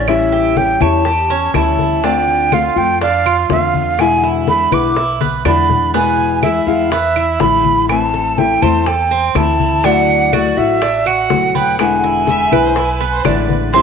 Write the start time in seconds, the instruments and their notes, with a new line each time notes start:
Already playing: upright bass A1, cuban tres C#4
0.07 nylon-string guitar E3 G3 C#4 E4, flute E5, high bongo, high conga, claves
0.32 cuban tres G4, high bongo, high conga
0.56 nylon-string guitar E3 G3 C#4 E4, flute G5, high bongo, high conga
0.80 upright bass E2, nylon-string guitar G3 C#4 E4, cuban tres C#5, flute A5, high conga, claves
1.05 cuban tres G4, muted nylon-string guitar stroke, high bongo, high conga
1.30 cuban tres C#4, high bongo, high conga
1.54 upright bass D2, nylon-string guitar E3 G3 C#4 E4, cuban tres E4, flute A5, high bongo, low bongo, high conga, claves
1.78 high bongo, high conga
2.03 nylon-string guitar D3 A3 C4 F4, cuban tres D4, flute G5, high bongo, high conga
2.28 high conga
2.52 nylon-string guitar D3 A3 C4 F4, cuban tres F4, flute F5, high bongo, high conga, claves
2.75 upright bass F2, nylon-string guitar A3 C4 F4, flute G5, high conga
3.01 cuban tres D4, flute F5, muted nylon-string guitar stroke, high bongo, high conga
3.25 cuban tres F4, high conga, claves
3.49 upright bass E2, nylon-string guitar D3 A3 C4 F4, flute F5, high bongo, low bongo, high conga
3.74 high conga
3.99 nylon-string guitar B2 D3 G#3 B3 E4, flute G#5, high bongo, high conga, claves
4.23 cuban tres E4, high bongo, high conga
4.47 nylon-string guitar D3 G#3 B3 E4, flute B5, high bongo, high conga
4.71 upright bass B1, nylon-string guitar D3 G#3 B3 E4, cuban tres B4, flute D6, high conga, claves
4.96 cuban tres E4, muted nylon-string guitar stroke, high bongo, high conga
5.21 cuban tres B3, high bongo, high conga
5.45 upright bass E2, nylon-string guitar D3 G#3 B3 E4, cuban tres D4, flute B5, high bongo, low bongo, high conga, claves
5.70 high bongo, low conga
5.94 nylon-string guitar B2 E3 G#3 B3 E4, cuban tres B3, flute G#5, high bongo, high conga
6.18 high conga
6.43 nylon-string guitar E3 G#3 B3 E4, cuban tres E4, flute E5, high bongo, high conga, claves
6.67 upright bass E2, nylon-string guitar E3 G#3 B3 E4, flute F5, high conga
6.91 cuban tres B3, flute E5, muted nylon-string guitar stroke, high bongo, high conga
7.16 cuban tres E4, high conga, claves
7.40 upright bass A1, nylon-string guitar E3 G#3 B3 E4, flute B5, high bongo, low bongo, high conga
7.64 high conga
7.88 nylon-string guitar E3 A3 C4 E4, flute A5, high bongo, high conga, claves
8.14 cuban tres A4, high bongo, high conga
8.37 nylon-string guitar E3 A3 C4 E4, flute G5, high bongo, high conga
8.62 upright bass E2, nylon-string guitar A3 C4 E4, cuban tres C5, flute A5, high conga, claves
8.86 cuban tres A4, flute G5, muted nylon-string guitar stroke, high bongo, high conga
9.11 cuban tres C4, high bongo, high conga
9.35 upright bass D2, nylon-string guitar E3 A3 C4 E4, cuban tres E4, flute A5, high bongo, low bongo, high conga, claves
9.60 high bongo, high conga
9.84 nylon-string guitar D3 F#3 A3 E4 F#4, cuban tres D4, flute F#5, high bongo, high conga
10.08 high conga
10.33 nylon-string guitar F#3 A3 E4 F#4, cuban tres F#4, flute D5, high bongo, high conga, claves
10.57 upright bass A1, nylon-string guitar F#3 A3 E4 F#4, flute E5, high conga
10.82 cuban tres D4, muted nylon-string guitar stroke, high bongo, high conga
11.06 cuban tres F#4, flute F#5, high conga, claves
11.30 upright bass E1, nylon-string guitar F#3 A3 E4 F#4, high bongo, low bongo, high conga
11.55 cuban tres B3, flute G5, high conga
11.78 nylon-string guitar B2 D3 G#3 B3 E4, flute G#5, high bongo, high conga, claves
12.03 cuban tres E4, high bongo, high conga
12.27 nylon-string guitar D3 G#3 B3 E4, violin section E5, high bongo, high conga
12.52 upright bass B1, nylon-string guitar D3 G#3 B3 E4, cuban tres B4, high conga, claves
12.64 violin section C5
12.75 cuban tres E4, violin section B4, muted nylon-string guitar stroke, high bongo, high conga
13.00 cuban tres B3, high bongo, high conga
13.13 violin section C5
13.24 upright bass A1, nylon-string guitar D3 G#3 B3 E4, cuban tres D4, violin section B4, high bongo, low bongo, high conga, claves
13.49 high bongo, high conga
13.73 nylon-string guitar E3 G3 C4 E4, cuban tres C4, flute C6, high bongo, high conga